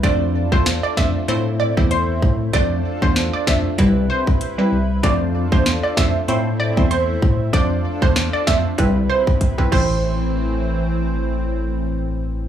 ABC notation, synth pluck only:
X:1
M:4/4
L:1/16
Q:"Swing 16ths" 1/4=96
K:Am
V:1 name="Synth pluck"
d z2 c z d e z3 d z c3 z | d z2 c z d e z3 c z4 z | d z2 c z d e z3 d z c3 z | d z2 c z d e z3 c z3 c2- |
c12 z4 |]